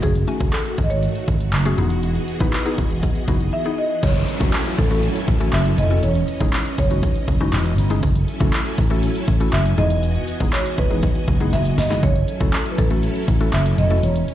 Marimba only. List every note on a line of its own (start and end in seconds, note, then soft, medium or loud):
0.02 0.49 G#4 medium
0.53 0.84 A4 loud
0.83 0.90 D#5 medium
0.90 1.74 C#5 loud
3.53 3.79 E5 loud
3.78 4.01 D#5 loud
4.03 4.80 C#5 loud
4.78 5.55 A4 loud
5.53 5.79 E5 loud
5.78 5.90 D#5 medium
6.03 6.74 C#5 loud
6.78 7.74 C#5 medium
9.53 9.76 E5 loud
9.78 10.55 D#5 loud
10.53 10.76 C#5 loud
10.78 11.49 B4 loud
11.53 11.79 E5 loud
11.78 12.04 D#5 loud
12.03 12.73 C#5 loud
12.71 12.78 B4 medium
12.78 13.55 A4 medium
13.53 13.64 E5 loud
13.78 14.01 D#5 loud
14.04 14.34 C#5 medium